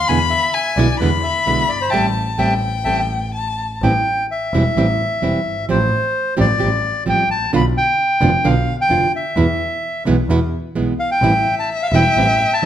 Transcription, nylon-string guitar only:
0.09 0.18 B2 medium
0.09 0.18 D3 medium
0.09 0.18 G#3 medium
0.09 0.18 B3 medium
0.09 0.18 E4 medium
0.77 0.86 B2 medium
0.77 0.87 D3 medium
0.77 0.87 G#3 medium
0.77 0.87 B3 medium
0.77 0.87 E4 medium
1.01 1.10 B2 medium
1.01 1.10 D3 medium
1.01 1.10 G#3 medium
1.01 1.10 B3 medium
1.01 1.10 E4 medium
1.47 1.64 B2 medium
1.47 1.64 D3 medium
1.47 1.64 G#3 medium
1.47 1.64 B3 medium
1.47 1.64 E4 medium
1.93 2.08 G3 medium
1.93 2.08 A3 medium
1.93 2.08 C4 medium
2.38 2.54 G3 medium
2.38 2.53 A3 medium
2.38 2.54 C4 medium
2.86 3.02 G3 medium
2.86 3.02 A3 medium
2.86 3.01 C4 medium
3.83 3.92 E3 medium
3.83 3.92 G3 medium
3.83 3.92 C4 medium
3.83 3.92 E4 medium
4.54 4.62 E3 medium
4.54 4.63 G3 medium
4.54 4.63 C4 medium
4.54 4.63 E4 medium
4.77 4.85 E3 medium
4.77 4.86 G3 medium
4.77 4.86 C4 medium
4.77 4.86 E4 medium
5.22 5.39 E3 medium
5.22 5.39 G3 medium
5.22 5.40 C4 medium
5.22 5.40 E4 medium
5.69 5.78 F3 medium
5.69 5.78 G3 medium
5.69 5.78 C4 medium
5.69 5.78 G4 medium
6.37 6.46 F3 medium
6.37 6.46 G3 medium
6.37 6.46 C4 medium
6.37 6.47 G4 medium
6.58 6.68 F3 medium
6.58 6.69 G3 medium
6.58 6.69 C4 medium
6.58 6.69 G4 loud
7.06 7.23 F3 medium
7.06 7.23 G3 medium
7.06 7.23 C4 medium
7.06 7.24 G4 medium
7.53 7.62 B2 medium
7.53 7.62 D3 medium
7.53 7.62 B3 medium
7.53 7.62 D4 medium
7.53 7.62 F4 medium
8.21 8.30 B2 medium
8.21 8.30 D3 medium
8.21 8.30 B3 medium
8.21 8.30 D4 loud
8.21 8.31 F4 loud
8.44 8.53 B2 medium
8.44 8.53 D3 medium
8.44 8.53 B3 medium
8.44 8.53 D4 medium
8.44 8.54 F4 medium
8.90 9.07 B2 medium
8.90 9.07 D3 medium
8.90 9.07 B3 medium
8.90 9.07 D4 medium
8.90 9.07 F4 medium
9.37 9.45 B2 medium
9.37 9.46 E3 medium
9.37 9.46 G#3 medium
9.37 9.46 B3 medium
9.37 9.46 E4 medium
10.06 10.15 B2 medium
10.06 10.15 E3 medium
10.06 10.16 G#3 medium
10.06 10.16 B3 medium
10.06 10.16 E4 medium
10.30 10.39 B2 medium
10.30 10.39 E3 medium
10.30 10.39 G#3 medium
10.30 10.39 B3 medium
10.30 10.39 E4 medium
10.75 10.93 B2 medium
10.75 10.93 E3 medium
10.75 10.93 G#3 medium
10.75 10.93 B3 medium
10.75 10.93 E4 medium
11.23 11.32 E3 medium
11.23 11.32 G3 medium
11.23 11.32 C4 medium
11.23 11.32 E4 medium
11.94 12.02 E3 medium
11.94 12.02 G3 medium
11.94 12.03 C4 medium
11.94 12.03 E4 medium
12.17 12.26 E3 medium
12.17 12.26 G3 medium
12.17 12.26 C4 medium
12.17 12.26 E4 medium
12.62 12.65 E3 medium

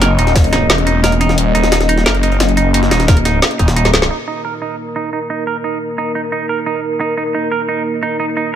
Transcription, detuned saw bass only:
0.00 0.17 F#1 loud
0.18 0.68 D#1 loud
0.70 1.36 E1 loud
1.38 1.53 D#1 medium
1.55 2.05 D#1 loud
2.06 2.90 F#1 loud
2.91 3.41 D#1 loud
3.59 4.09 D#1 loud

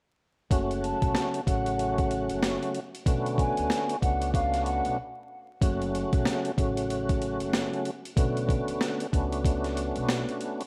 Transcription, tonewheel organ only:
0.50 1.40 C#3 medium
0.50 1.41 F#3 medium
0.50 1.41 A3 medium
0.50 1.41 C#4 medium
0.50 1.41 F#4 loud
1.46 2.79 C#3 medium
1.46 2.80 F#3 medium
1.46 2.80 A3 medium
1.46 2.80 C#4 medium
1.46 2.80 F#4 loud
3.06 3.96 D3 medium
3.06 3.96 A3 medium
3.06 3.96 B3 medium
3.06 3.96 C#4 medium
3.06 3.97 F#4 loud
4.01 4.97 A3 medium
4.01 4.98 B3 medium
4.01 4.98 C#4 medium
4.01 4.97 D4 medium
4.01 4.98 F#4 loud
5.61 6.51 C#3 medium
5.61 6.51 F#3 medium
5.61 6.51 A3 medium
5.61 6.52 C#4 medium
5.61 6.52 F#4 loud
6.57 7.90 C#3 medium
6.57 7.90 F#3 medium
6.57 7.91 A3 medium
6.57 7.91 C#4 medium
6.57 7.91 F#4 loud
8.16 9.06 D3 medium
8.16 9.06 A3 medium
8.16 9.07 B3 medium
8.16 9.07 C#4 medium
8.16 9.07 F#4 loud
9.12 10.62 A3 medium
9.12 10.62 B3 medium
9.12 10.62 C#4 medium
9.12 10.62 D4 medium
9.12 10.63 F#4 loud

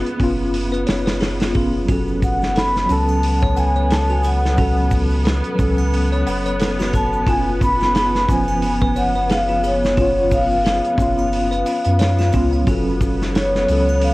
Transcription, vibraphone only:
2.24 2.58 F#5 medium
2.57 2.91 B5 loud
2.91 3.60 A5 loud
3.58 3.92 G#5 loud
3.93 4.11 A5 loud
4.11 4.25 G#5 medium
4.26 4.89 F#5 medium
6.95 7.26 A5 medium
7.29 7.44 G#5 loud
7.63 8.25 B5 loud
8.30 8.99 G#5 loud
8.98 9.32 F#5 loud
9.32 9.66 F5 loud
9.66 9.97 C#5 medium
9.99 10.33 C#5 loud
10.33 12.31 F5 medium
13.37 13.99 C#5 medium
14.04 14.14 F5 loud

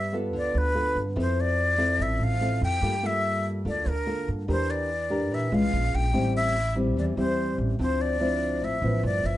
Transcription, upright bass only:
0.00 0.34 G2 medium
0.34 0.53 D2 medium
0.55 0.93 D2 medium
0.96 1.15 G2 medium
1.16 2.00 F2 loud
1.99 2.18 A1 medium
2.19 2.58 A1 medium
2.61 2.81 F2 medium
2.82 3.66 G2 medium
3.65 3.84 D2 medium
3.86 4.24 D2 medium
4.28 4.47 G2 medium
4.48 5.31 E2 medium
5.31 5.50 A#2 medium
5.52 5.71 C2 medium
5.73 5.92 A#1 medium
5.94 6.13 A#1 medium
6.14 6.96 A1 medium
6.96 7.16 E2 medium
7.17 7.56 E2 medium
7.58 7.78 A1 medium
7.79 8.62 D2 medium
8.62 8.81 A1 medium
8.82 9.02 A1 medium
9.03 9.23 G1 loud
9.24 9.37 G1 medium

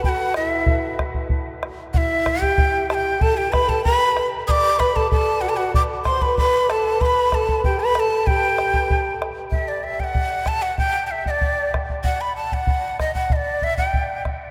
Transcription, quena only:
0.05 0.10 G5 medium
0.09 0.34 F#5 medium
0.36 0.95 E5 medium
1.94 2.44 E5 medium
1.94 1.98 F#5 medium
2.42 2.89 G5 medium
2.90 2.95 A5 medium
2.94 3.23 G5 medium
3.22 3.39 A5 medium
3.37 3.54 G5 medium
3.52 3.71 B5 medium
3.69 3.84 A5 medium
3.85 4.28 B5 loud
4.47 4.81 D6 loud
4.47 4.52 D#6 loud
4.79 4.97 B5 medium
4.96 5.11 A5 medium
5.12 5.43 A5 medium
5.41 5.51 F#5 medium
5.49 5.58 A5 medium
5.57 5.74 F#5 medium
5.75 5.82 D6 loud
6.05 6.23 C6 medium
6.22 6.37 B5 medium
6.38 6.72 B5 medium
6.70 7.03 A5 medium
7.01 7.07 C6 medium
7.06 7.36 B5 medium
7.34 7.64 A5 medium
7.65 7.81 G5 medium
7.80 7.95 B5 medium
7.95 8.01 B5 medium
8.00 8.28 A5 medium
8.27 9.21 G5 medium
9.51 9.70 E5 medium
9.68 9.85 D5 medium
9.84 10.01 E5 medium
10.00 10.05 G5 medium
10.04 10.49 F#5 medium
10.48 10.64 A5 medium
10.62 10.78 F#5 medium
10.79 11.04 G5 loud
11.06 11.12 G5 soft
11.11 11.26 E5 medium
11.27 11.71 D5 medium
11.27 11.31 D#5 medium
12.04 12.22 F#5 medium
12.21 12.36 B5 medium
12.36 12.55 A5 medium
12.53 13.00 F#5 medium
13.00 13.14 D#5 medium
13.15 13.34 F#5 medium
13.33 13.65 D5 medium
13.33 13.37 D#5 medium
13.64 13.77 E5 medium
13.78 14.22 G5 medium

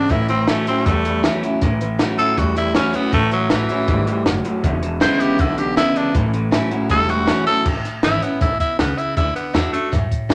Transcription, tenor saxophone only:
0.00 0.12 D4 medium
0.11 0.29 E4 medium
0.29 0.50 C4 medium
0.49 0.67 A3 medium
0.68 0.87 C4 medium
0.86 1.23 A3 loud
2.18 2.39 A4 loud
2.38 2.56 F#4 medium
2.58 2.75 E4 medium
2.76 2.97 C#4 medium
2.95 3.13 B3 medium
3.13 3.31 A3 loud
3.33 3.52 F#3 medium
3.51 4.24 E3 medium
5.02 5.22 C5 medium
5.21 5.42 G4 medium
5.40 5.60 E4 medium
5.58 5.77 G4 medium
5.77 5.98 E4 loud
5.97 6.15 D4 medium
6.91 7.11 A4 loud
7.10 7.46 F#4 medium
7.47 7.65 A4 loud
8.04 8.24 E4 loud
8.23 8.41 B3 medium
8.42 8.60 E4 medium
8.60 8.79 E4 medium
8.80 9.00 B3 medium
8.98 9.17 E4 medium
9.17 9.35 E4 medium
9.36 9.56 B3 medium
9.55 9.72 E4 medium
9.73 9.92 A3 medium

